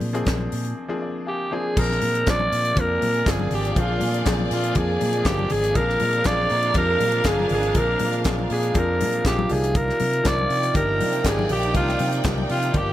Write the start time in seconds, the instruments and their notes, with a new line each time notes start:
Already playing: grand piano F3 A#3 C4 D4 G4 G#4
0.00 fingered electric bass A#2, open hi-hat, high conga
0.13 grand piano F3 A#3 C4 D4 G#4, closed hi-hat
0.25 fingered electric bass A#1, kick, snare, clap, closed hi-hat, high conga
0.38 high conga
0.52 fingered electric bass A#2, open hi-hat
0.64 closed hi-hat
0.88 grand piano F3 A#3 C4 D4 G#4
1.02 grand piano D5
1.27 alto saxophone G4, grand piano F5 G#5
1.51 grand piano F3 A#3 C4 D4 G#4, alto saxophone G#4
1.76 fingered electric bass A#1, french horn section D3 F3 G#3 A#3 F4, grand piano F3 A#3 C4 D4 G#4, alto saxophone A#4, kick, crash, muted conga, low conga
1.90 snare, muted conga
2.01 fingered electric bass A#2, open hi-hat, high conga
2.15 closed hi-hat
2.26 fingered electric bass A#1, grand piano F3 A#3 C4 D4 A#4, alto saxophone D5, kick, snare, clap, closed hi-hat, high conga
2.40 high conga
2.52 fingered electric bass A#2, open hi-hat
2.65 closed hi-hat
2.75 fingered electric bass F2, grand piano F3 A#3 C4 D4 F4, string section A#3 G#4 D5, kick, closed hi-hat, low conga
2.80 alto saxophone A#4
3.02 fingered electric bass A#2, open hi-hat, high conga
3.14 closed hi-hat
3.26 fingered electric bass G1, grand piano F3 A#3 C4 D4 G#4, kick, snare, clap, closed hi-hat, high conga
3.30 alto saxophone G#4
3.39 muted conga, high conga
3.51 fingered electric bass G#1, alto saxophone G4, open hi-hat, low conga
3.65 closed hi-hat
3.76 fingered electric bass A#1, grand piano F3 A#3 C4 D4 G#4, alto saxophone F4, kick, closed hi-hat, muted conga, low conga
3.88 muted conga
4.00 fingered electric bass A#2, open hi-hat, high conga
4.14 closed hi-hat
4.25 fingered electric bass A#1, grand piano F3 A#3 C4 D4 G#4, kick, snare, clap, closed hi-hat, high conga
4.39 muted conga, high conga
4.51 fingered electric bass A#2, alto saxophone F4, open hi-hat
4.63 closed hi-hat
4.75 fingered electric bass F2, grand piano F3 A#3 C4 D4 F4, alto saxophone G#4, kick, closed hi-hat, low conga
5.01 fingered electric bass A#2, open hi-hat, high conga
5.13 closed hi-hat
5.25 fingered electric bass G1, grand piano F3 A#3 C4 D4 G#4, alto saxophone G4, kick, snare, clap, closed hi-hat, muted conga, high conga
5.39 high conga
5.49 fingered electric bass G#1, alto saxophone G#4, open hi-hat, low conga
5.63 closed hi-hat
5.74 fingered electric bass A#1, grand piano F3 A#3 C4 D4 G#4, string section D4 A#4 F5, alto saxophone A#4, kick, closed hi-hat, low conga
5.89 snare
5.99 fingered electric bass A#2, open hi-hat, high conga
6.13 closed hi-hat
6.24 fingered electric bass A#1, grand piano F3 A#3 C4 D4 G#4, alto saxophone D5, kick, snare, clap, closed hi-hat, muted conga, high conga
6.38 high conga
6.49 fingered electric bass A#2, open hi-hat
6.62 closed hi-hat
6.74 fingered electric bass F2, grand piano F3 A#3 C4 D4 G4, alto saxophone A#4, kick, closed hi-hat, muted conga, low conga
7.00 fingered electric bass A#2, open hi-hat, high conga
7.12 closed hi-hat
7.24 fingered electric bass G1, grand piano F3 A#3 C4 D4 G#4, alto saxophone G#4, kick, snare, clap, closed hi-hat, muted conga, high conga
7.39 high conga
7.49 fingered electric bass G#1, open hi-hat, low conga
7.54 alto saxophone G#4
7.63 closed hi-hat
7.74 fingered electric bass A#1, grand piano F3 A#3 C4 D4 A#4, kick, closed hi-hat, muted conga, low conga
7.79 alto saxophone A#4
7.99 fingered electric bass A#2, open hi-hat, high conga
8.13 closed hi-hat
8.24 fingered electric bass A#1, grand piano F3 A#3 C4 D4 G#4, kick, snare, clap, closed hi-hat, high conga
8.39 high conga
8.50 fingered electric bass A#2, alto saxophone G#4, open hi-hat
8.63 closed hi-hat
8.74 fingered electric bass F2, grand piano F3 A#3 C4 D4 G#4, kick, closed hi-hat, muted conga, low conga
8.78 alto saxophone A#4
9.00 fingered electric bass A#2, open hi-hat, high conga
9.13 closed hi-hat
9.24 fingered electric bass A#1, grand piano F3 A#3 C4 D4 G#4, alto saxophone G4, kick, snare, clap, closed hi-hat, high conga
9.39 muted conga, high conga
9.49 fingered electric bass C2, french horn section C3 D#3 D5, grand piano F3 A#3 D4 D#4 G4, alto saxophone G#4, open hi-hat, low conga
9.64 closed hi-hat
9.75 alto saxophone A#4, kick, closed hi-hat, low conga
9.88 snare, muted conga
9.99 fingered electric bass C3, open hi-hat, high conga
10.13 closed hi-hat
10.23 fingered electric bass C2, grand piano F3 A#3 D4 D#4 A#4, alto saxophone D5, kick, snare, clap, closed hi-hat, high conga
10.38 high conga
10.49 fingered electric bass C3, string section D#4 D5 G5, open hi-hat
10.63 closed hi-hat
10.73 fingered electric bass G1, grand piano F3 A#3 D4 D#4 G4, alto saxophone A#4, kick, closed hi-hat, muted conga, low conga
11.00 fingered electric bass C3, open hi-hat, high conga
11.12 closed hi-hat
11.23 fingered electric bass G#1, grand piano F3 A#3 D4 D#4 G4, kick, snare, clap, closed hi-hat, high conga
11.27 alto saxophone G#4
11.39 muted conga, high conga
11.49 fingered electric bass A#1, alto saxophone G4, open hi-hat, low conga
11.63 closed hi-hat
11.73 fingered electric bass C2, grand piano F3 A#3 D4 D#4 G4, alto saxophone F4, kick, closed hi-hat, low conga
11.88 snare, muted conga
11.99 fingered electric bass C3, open hi-hat, high conga
12.12 closed hi-hat
12.23 fingered electric bass C2, grand piano F3 A#3 D4 D#4 G4, kick, snare, clap, closed hi-hat, muted conga, high conga
12.38 muted conga, high conga
12.49 fingered electric bass C3, alto saxophone F4, open hi-hat
12.62 closed hi-hat
12.73 fingered electric bass G1, grand piano F3 A#3 D4 D#4 G4, alto saxophone G4, kick, closed hi-hat, muted conga, low conga